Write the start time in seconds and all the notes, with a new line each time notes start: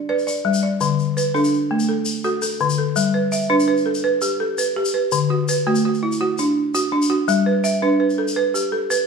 0.09 B4 D5
0.19 shaker
0.27 D5, shaker
0.36 shaker
0.45 G3
0.54 shaker
0.63 D5
0.81 D3, shaker
0.99 shaker
1.17 B4, shaker
1.34 D4 A4, shaker
1.44 shaker
1.54 shaker
1.71 A3
1.80 shaker
1.89 A4
2.05 shaker
2.15 shaker
2.24 F#4 A4, shaker
2.42 A4, shaker
2.51 shaker
2.60 D3, shaker
2.70 shaker
2.78 A4
2.96 G3, shaker
3.14 B4
3.32 E5, shaker
3.42 shaker
3.50 D4 B4
3.60 shaker
3.68 B4
3.77 shaker
3.86 A4
3.95 shaker
4.04 B4
4.21 G4, shaker
4.40 A4
4.58 B4, shaker
4.76 G4
4.85 shaker
4.94 B4
5.12 D3, shaker
5.30 F#4
5.48 B4, shaker
5.57 shaker
5.67 A3 F#4
5.75 shaker
5.85 F#4
5.94 shaker
6.03 E4
6.12 shaker
6.21 F#4
6.38 D4, shaker
6.74 F#4, shaker
6.92 D4
7.02 shaker
7.10 F#4
7.28 G3, shaker
7.46 B4
7.64 E5, shaker
7.73 shaker
7.82 D4 B4
8.00 B4
8.10 shaker
8.18 A4
8.28 shaker
8.36 B4
8.54 G4, shaker
8.72 A4
8.90 B4, shaker